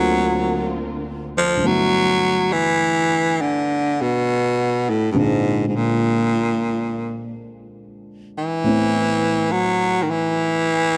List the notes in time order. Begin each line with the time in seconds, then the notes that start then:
Already playing: D2 D3 F#3 A#3 C4 D4 F4 A#4
1.38 F3
1.57 G2 D3
1.62 A3 B3
1.67 F#3 E4
2.52 E3
3.41 D3
4.01 B2
4.90 A2
5.12 G2 A#2 D3 G#3 C4 D4
5.19 G#2
5.68 G#2
5.76 A#2
8.38 E3
8.64 A2 E3 A3 B3 C4
9.52 F#3
10.02 D#3
10.11 E3